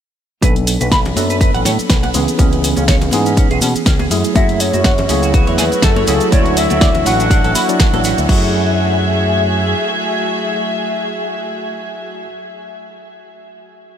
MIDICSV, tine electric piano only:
0, 0, Header, 1, 2, 480
1, 0, Start_track
1, 0, Key_signature, 3, "minor"
1, 0, Tempo, 491803
1, 413, Time_signature, 4, 2, 24, 8
1, 13643, End_track
2, 0, Start_track
2, 0, Title_t, "Tine electric piano"
2, 0, Program_c, 0, 4
2, 405, Note_on_c, 0, 54, 81
2, 411, Note_on_c, 0, 59, 77
2, 418, Note_on_c, 0, 62, 79
2, 425, Note_on_c, 0, 69, 90
2, 1103, Note_off_c, 0, 54, 0
2, 1106, Note_off_c, 0, 59, 0
2, 1110, Note_off_c, 0, 62, 0
2, 1113, Note_off_c, 0, 69, 0
2, 1126, Note_on_c, 0, 54, 91
2, 1132, Note_on_c, 0, 59, 82
2, 1137, Note_on_c, 0, 62, 84
2, 1144, Note_on_c, 0, 69, 101
2, 2063, Note_off_c, 0, 54, 0
2, 2066, Note_off_c, 0, 59, 0
2, 2069, Note_off_c, 0, 62, 0
2, 2073, Note_off_c, 0, 69, 0
2, 2088, Note_on_c, 0, 52, 99
2, 2090, Note_on_c, 0, 59, 91
2, 2093, Note_on_c, 0, 61, 92
2, 2096, Note_on_c, 0, 68, 109
2, 2305, Note_off_c, 0, 52, 0
2, 2306, Note_off_c, 0, 59, 0
2, 2307, Note_off_c, 0, 61, 0
2, 2309, Note_off_c, 0, 68, 0
2, 2321, Note_on_c, 0, 52, 92
2, 2328, Note_on_c, 0, 59, 84
2, 2335, Note_on_c, 0, 61, 85
2, 2343, Note_on_c, 0, 68, 102
2, 3021, Note_off_c, 0, 52, 0
2, 3025, Note_off_c, 0, 59, 0
2, 3028, Note_off_c, 0, 61, 0
2, 3032, Note_off_c, 0, 68, 0
2, 3043, Note_on_c, 0, 52, 93
2, 3049, Note_on_c, 0, 59, 87
2, 3056, Note_on_c, 0, 61, 88
2, 3063, Note_on_c, 0, 68, 108
2, 3982, Note_off_c, 0, 52, 0
2, 3985, Note_off_c, 0, 59, 0
2, 3989, Note_off_c, 0, 61, 0
2, 3992, Note_off_c, 0, 68, 0
2, 4006, Note_on_c, 0, 54, 95
2, 4007, Note_on_c, 0, 57, 91
2, 4012, Note_on_c, 0, 64, 90
2, 4014, Note_on_c, 0, 68, 106
2, 4223, Note_off_c, 0, 54, 0
2, 4224, Note_off_c, 0, 57, 0
2, 4226, Note_off_c, 0, 64, 0
2, 4227, Note_off_c, 0, 68, 0
2, 4240, Note_on_c, 0, 54, 83
2, 4247, Note_on_c, 0, 57, 78
2, 4253, Note_on_c, 0, 64, 77
2, 4261, Note_on_c, 0, 68, 92
2, 4941, Note_off_c, 0, 54, 0
2, 4944, Note_off_c, 0, 57, 0
2, 4947, Note_off_c, 0, 64, 0
2, 4951, Note_off_c, 0, 68, 0
2, 4962, Note_on_c, 0, 54, 88
2, 4969, Note_on_c, 0, 57, 85
2, 4975, Note_on_c, 0, 64, 87
2, 4983, Note_on_c, 0, 68, 108
2, 5902, Note_off_c, 0, 54, 0
2, 5905, Note_off_c, 0, 57, 0
2, 5908, Note_off_c, 0, 64, 0
2, 5912, Note_off_c, 0, 68, 0
2, 5927, Note_on_c, 0, 54, 103
2, 5932, Note_on_c, 0, 57, 88
2, 5934, Note_on_c, 0, 64, 91
2, 5937, Note_on_c, 0, 68, 112
2, 6144, Note_off_c, 0, 54, 0
2, 6147, Note_off_c, 0, 57, 0
2, 6148, Note_off_c, 0, 64, 0
2, 6149, Note_off_c, 0, 68, 0
2, 6161, Note_on_c, 0, 54, 92
2, 6167, Note_on_c, 0, 62, 86
2, 6174, Note_on_c, 0, 64, 86
2, 6180, Note_on_c, 0, 73, 110
2, 6861, Note_off_c, 0, 54, 0
2, 6864, Note_off_c, 0, 62, 0
2, 6868, Note_off_c, 0, 64, 0
2, 6871, Note_off_c, 0, 73, 0
2, 6883, Note_on_c, 0, 54, 95
2, 6889, Note_on_c, 0, 62, 91
2, 6895, Note_on_c, 0, 64, 90
2, 6902, Note_on_c, 0, 85, 109
2, 7473, Note_off_c, 0, 54, 0
2, 7476, Note_off_c, 0, 62, 0
2, 7479, Note_off_c, 0, 64, 0
2, 7483, Note_off_c, 0, 85, 0
2, 7502, Note_on_c, 0, 54, 100
2, 7506, Note_on_c, 0, 62, 87
2, 7508, Note_on_c, 0, 64, 86
2, 7511, Note_on_c, 0, 74, 101
2, 7712, Note_off_c, 0, 54, 0
2, 7714, Note_off_c, 0, 62, 0
2, 7715, Note_off_c, 0, 64, 0
2, 7717, Note_off_c, 0, 74, 0
2, 7738, Note_on_c, 0, 54, 78
2, 7744, Note_on_c, 0, 62, 66
2, 7746, Note_on_c, 0, 64, 69
2, 7748, Note_on_c, 0, 74, 85
2, 8064, Note_off_c, 0, 54, 0
2, 8067, Note_off_c, 0, 62, 0
2, 8068, Note_off_c, 0, 64, 0
2, 8069, Note_off_c, 0, 74, 0
2, 8080, Note_on_c, 0, 54, 91
2, 8091, Note_on_c, 0, 57, 80
2, 8101, Note_on_c, 0, 64, 81
2, 8112, Note_on_c, 0, 68, 99
2, 11950, Note_off_c, 0, 54, 0
2, 11961, Note_off_c, 0, 57, 0
2, 11971, Note_off_c, 0, 64, 0
2, 11981, Note_off_c, 0, 68, 0
2, 13643, End_track
0, 0, End_of_file